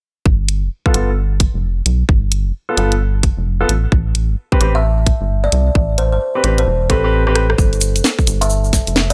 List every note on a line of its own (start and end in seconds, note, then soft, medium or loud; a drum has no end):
0.26 0.64 G1 medium
0.26 kick loud
0.49 closed hi-hat loud
0.63 0.69 F1 medium
0.86 0.93 B3 medium
0.86 0.93 F4 medium
0.86 0.93 A4 medium
0.86 kick loud
0.94 1.48 G1 medium
0.94 1.08 B3 medium
0.94 1.08 F4 medium
0.94 1.08 A4 medium
0.94 closed hi-hat loud
1.40 kick loud
1.40 closed hi-hat loud
1.54 1.82 F1 medium
1.86 2.04 B1 medium
1.86 closed hi-hat loud
2.09 2.47 G1 medium
2.09 kick loud
2.32 closed hi-hat loud
2.46 2.52 F1 medium
2.69 2.76 B3 medium
2.69 2.76 F4 medium
2.69 2.76 A4 medium
2.77 3.31 G1 loud
2.77 2.92 B3 medium
2.77 2.92 F4 medium
2.77 2.92 A4 medium
2.77 closed hi-hat loud
2.92 closed hi-hat medium
3.23 kick loud
3.23 closed hi-hat loud
3.38 3.65 F1 medium
3.61 3.68 B3 medium
3.61 3.68 F4 medium
3.61 3.68 A4 medium
3.69 3.87 A1 medium
3.69 closed hi-hat loud
3.92 4.31 A1 medium
3.92 kick loud
4.15 closed hi-hat loud
4.29 4.35 G1 medium
4.52 4.59 C4 medium
4.52 4.59 G4 medium
4.52 4.59 B4 medium
4.52 kick loud
4.61 5.14 A1 loud
4.61 4.75 C4 medium
4.61 4.75 G4 medium
4.61 4.75 B4 medium
4.61 closed hi-hat medium
4.75 4.91 E5 medium
5.07 kick loud
5.07 closed hi-hat loud
5.21 5.48 G1 medium
5.44 5.96 D5 medium
5.52 5.70 C2 loud
5.52 closed hi-hat loud
5.75 6.14 A1 medium
5.75 kick loud
5.98 6.07 C5 medium
5.98 closed hi-hat loud
6.12 6.18 G1 medium
6.12 6.18 C5 medium
6.35 6.42 C4 medium
6.35 6.42 G4 medium
6.35 6.42 B4 medium
6.44 6.66 A1 loud
6.44 6.58 C4 medium
6.44 6.58 G4 medium
6.44 6.58 B4 medium
6.44 closed hi-hat medium
6.58 6.88 C5 medium
6.58 closed hi-hat medium
6.67 6.91 E1 medium
6.90 7.54 A1 loud
6.90 7.02 C4 medium
6.90 7.02 G4 medium
6.90 7.27 A4 medium
6.90 7.02 B4 medium
6.90 kick loud
6.90 closed hi-hat loud
7.04 7.21 C4 medium
7.04 7.21 G4 medium
7.04 7.21 B4 loud
7.27 7.44 C4 medium
7.27 7.44 G4 medium
7.27 7.44 B4 loud
7.27 cross-stick medium
7.36 cross-stick medium
7.36 closed hi-hat loud
7.50 cross-stick medium
7.58 7.97 G1 loud
7.58 kick loud
7.58 cabasa medium
7.73 closed hi-hat soft
7.73 cabasa soft
7.81 closed hi-hat loud
7.81 cabasa medium
7.96 8.02 F1 medium
7.96 closed hi-hat medium
7.96 cabasa soft
8.04 snare loud
8.04 cabasa medium
8.19 kick loud
8.19 cabasa soft
8.27 8.80 G1 loud
8.27 closed hi-hat loud
8.27 cabasa medium
8.41 8.57 E5 medium
8.41 closed hi-hat medium
8.41 cabasa soft
8.50 cabasa medium
8.64 cabasa soft
8.73 kick loud
8.73 snare medium
8.73 closed hi-hat loud
8.73 cabasa loud
8.87 9.13 F1 medium
8.87 closed hi-hat medium
8.87 cabasa soft
8.96 snare loud
8.96 cabasa soft
9.10 9.13 D5 medium
9.10 closed hi-hat medium